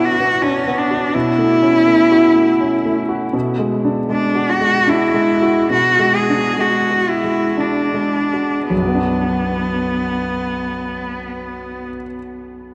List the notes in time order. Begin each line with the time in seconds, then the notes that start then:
Already playing: B2 B3 D4 F#4
0.06 F#4
0.20 B3
0.42 C#4 D4
0.68 B3
0.78 D4
0.91 F#4
1.14 B2 E4
1.39 A3
1.62 C#4
1.87 A3
2.12 F#4
2.35 A3
2.60 C#4
2.85 A3
3.09 F#4
3.33 B2
3.59 G#3
3.85 D4
4.09 G#3 D4
4.35 F#4
4.50 F#4
4.61 G#3
4.87 D4 E4
5.14 G#3
5.42 F#4
5.70 B2 F#4
5.99 G#3
6.15 G#4
6.29 D4
6.59 G#3 F#4
6.91 F#4
7.09 E4
7.24 G#3
7.57 D4
7.94 G#3
8.33 F#4
8.70 B1 B3
8.76 F#2
8.82 F#3
8.88 B3
8.95 D4
9.00 F#4